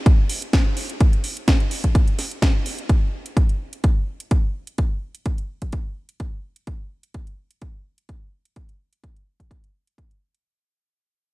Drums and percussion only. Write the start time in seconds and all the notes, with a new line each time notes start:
0.06 kick, closed hi-hat
0.29 open hi-hat
0.42 closed hi-hat
0.53 kick, snare, closed hi-hat
0.77 open hi-hat
0.90 closed hi-hat
1.00 kick, closed hi-hat
1.13 closed hi-hat
1.24 open hi-hat
1.37 closed hi-hat
1.48 kick, snare, closed hi-hat
1.60 closed hi-hat
1.71 open hi-hat
1.84 kick, closed hi-hat
1.95 kick, closed hi-hat
2.08 closed hi-hat
2.19 snare, open hi-hat
2.31 closed hi-hat
2.42 kick, snare, closed hi-hat
2.66 open hi-hat
2.78 closed hi-hat
2.89 kick, closed hi-hat
3.26 closed hi-hat
3.37 kick, closed hi-hat
3.49 closed hi-hat
3.73 closed hi-hat
3.84 kick, closed hi-hat
4.20 closed hi-hat
4.31 kick, closed hi-hat
4.67 closed hi-hat
4.78 kick, closed hi-hat
5.15 closed hi-hat
5.26 kick, closed hi-hat
5.38 closed hi-hat
5.62 kick, closed hi-hat
5.72 kick, closed hi-hat
6.09 closed hi-hat
6.20 kick, closed hi-hat
6.56 closed hi-hat
6.67 kick, closed hi-hat
7.03 closed hi-hat
7.14 kick, closed hi-hat
7.27 closed hi-hat
7.51 closed hi-hat
7.62 kick, closed hi-hat
7.98 closed hi-hat
8.09 kick, closed hi-hat
8.45 closed hi-hat
8.56 kick, closed hi-hat
8.69 closed hi-hat
8.93 closed hi-hat
9.04 kick, closed hi-hat
9.16 closed hi-hat
9.40 kick, closed hi-hat
9.51 kick, closed hi-hat
9.64 closed hi-hat
9.87 closed hi-hat
9.98 kick, closed hi-hat
10.11 closed hi-hat
10.35 closed hi-hat